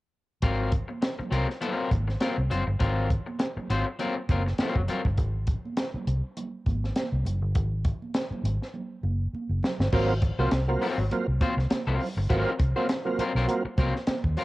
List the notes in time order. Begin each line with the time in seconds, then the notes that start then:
0.42 G#1 F#3 C4 F4 A#4, kick, closed hi-hat, muted conga
0.72 kick, closed hi-hat, muted conga
0.88 muted clean electric guitar stroke, high conga
1.02 muted clean electric guitar stroke, snare, closed hi-hat, muted conga
1.19 muted clean electric guitar stroke, muted fingered electric bass stroke, high conga, low conga
1.31 C2 F#3 C4 F4 A#4, closed hi-hat, muted conga
1.48 muted clean electric guitar stroke, snare
1.61 F3 B3 E4 A4, closed hi-hat, muted conga, high conga, low conga
1.73 F#3 C4 F4 A#4
1.91 G#1, muted clean electric guitar stroke, kick, closed hi-hat, high conga
2.08 muted clean electric guitar stroke, snare
2.20 F#3 C4 F4 A#4, snare, closed hi-hat, high conga
2.37 C2, muted clean electric guitar stroke
2.50 F#1 F#3 C4 F4 C5, closed hi-hat, muted conga, low conga
2.67 G1, muted clean electric guitar stroke
2.79 G#1 F#3 C4 F4 A#4, kick, closed hi-hat, muted conga
3.10 kick, closed hi-hat, muted conga
3.26 muted clean electric guitar stroke, high conga
3.39 muted clean electric guitar stroke, snare, closed hi-hat, muted conga
3.56 muted fingered electric bass stroke, muted clean electric guitar stroke, high conga, low conga
3.70 G#1 F#3 C4 F4 C5, closed hi-hat
3.87 muted clean electric guitar stroke
3.99 F#3 C4 F4 A#4, closed hi-hat, muted conga, high conga, low conga
4.16 muted clean electric guitar stroke
4.29 F#1 F#3 C4 F4 A#4, kick, closed hi-hat, high conga
4.46 muted clean electric guitar stroke, snare
4.58 F#3 C4 F4 A#4, muted fingered electric bass stroke, snare, closed hi-hat, muted conga, high conga
4.75 F#1, muted clean electric guitar stroke, kick
4.88 F#3 C4 F4 A#4, closed hi-hat, muted conga, low conga
5.05 G1, muted clean electric guitar stroke, kick
5.18 G#1, kick, closed hi-hat, muted conga
5.47 kick, closed hi-hat, muted conga
5.65 high conga
5.77 snare, closed hi-hat, muted conga
5.94 muted fingered electric bass stroke, high conga, low conga
6.07 C2, closed hi-hat, muted conga
6.37 closed hi-hat, muted conga, high conga, low conga
6.66 G#1, kick, closed hi-hat, high conga
6.84 snare
6.96 snare, closed hi-hat, muted conga, high conga
7.12 C2
7.25 F#1, closed hi-hat, low conga
7.42 G1
7.55 G#1, kick, closed hi-hat, muted conga
7.85 kick, closed hi-hat
8.02 high conga
8.14 snare, closed hi-hat
8.31 muted fingered electric bass stroke, high conga, low conga
8.44 G#1, closed hi-hat, muted conga
8.62 snare
8.74 high conga, low conga
9.03 F#1, muted conga, high conga
9.33 muted fingered electric bass stroke, muted conga, high conga
9.49 F#1, high conga
9.63 snare, muted conga, low conga
9.80 G1, snare
9.92 G#1 F#3 A#3 C4 F4 A#4, kick, crash, muted conga
10.09 muted clean electric guitar stroke
10.22 muted clean electric guitar stroke, kick, closed hi-hat, muted conga
10.39 C2 F#3 A#3 C4 F4 C5, high conga
10.51 C2, muted clean electric guitar stroke, snare, closed hi-hat, muted conga
10.68 F#3 A#3 C4 F4, muted clean electric guitar stroke, high conga, low conga
10.82 F#3 C4 F4 A#4, open hi-hat
10.98 G#1, muted clean electric guitar stroke
11.11 F#3 A#3 C4 F4, muted clean electric guitar stroke, closed hi-hat, muted conga, high conga, low conga
11.28 C2
11.40 F#3 C4 F4 C5, kick, closed hi-hat, muted conga, high conga
11.57 C2, muted clean electric guitar stroke, snare
11.70 muted clean electric guitar stroke, snare, closed hi-hat, muted conga, high conga
11.87 C2 F#3 C4 F4 A#4, high conga
12.00 C4 F4, muted clean electric guitar stroke, open hi-hat, muted conga, low conga
12.16 G1, muted clean electric guitar stroke
12.29 G#1 F#3 A#3 C4 F4 A#4, kick, closed hi-hat, muted conga
12.59 C2, muted clean electric guitar stroke, kick, closed hi-hat, muted conga
12.76 F#3 A#3 C4 F4 C5, high conga
12.89 muted clean electric guitar stroke, snare, closed hi-hat, muted conga
13.05 F#3 A#3 C4 F4, muted clean electric guitar stroke, high conga, low conga
13.18 F#3 C4 F4 A#4, muted fingered electric bass stroke, closed hi-hat
13.35 B1 F#3 C4 F4 A#4, snare
13.48 F#3 A#3 C4 F4, muted clean electric guitar stroke, closed hi-hat, muted conga, high conga, low conga
13.64 muted fingered electric bass stroke, muted clean electric guitar stroke
13.77 C2 F#3 C4 F4 A#4, kick, closed hi-hat, muted conga, high conga
13.95 muted clean electric guitar stroke, snare
14.07 muted fingered electric bass stroke, muted clean electric guitar stroke, snare, closed hi-hat, muted conga, high conga
14.24 D#2, kick
14.37 F#3 C4 F4 A#4, open hi-hat, muted conga, low conga